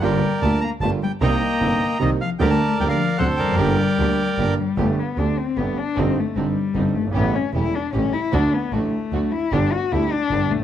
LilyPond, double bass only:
\new Staff \with { instrumentName = "Double bass" } { \clef bass \time 3/4 \key g \minor \tempo 4 = 152 g,,8 r8 d,8 r8 g,,8 r8 | c,8 r8 g,,8 r8 c,8 r8 | d,8 r8 d,8 r8 d,8 f,,8 | g,,8 r8 d,8 r8 g,,8 r8 |
\key g \major g,,8 r8 d,8 r8 g,,8 r8 | g,,8 r8 g,,8 r8 g,,8 g,,8 | a,,8 r8 e,,8 r8 a,,8 r8 | d,8 r8 a,,8 r8 d,8 r8 |
g,,8 r8 d,8 r8 g,,8 bes,,8 | }